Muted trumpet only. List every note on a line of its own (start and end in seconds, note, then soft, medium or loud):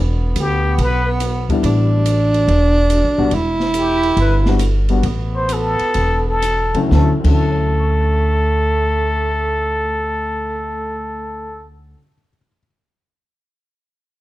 0.40 0.84 G4 medium
0.82 1.09 B4 medium
3.78 4.16 G4 medium
4.20 4.37 B4 medium
5.36 5.54 C5 medium
5.53 6.28 A4 medium
6.29 6.81 A4 medium
6.94 7.12 A4 medium
7.27 11.67 A4 medium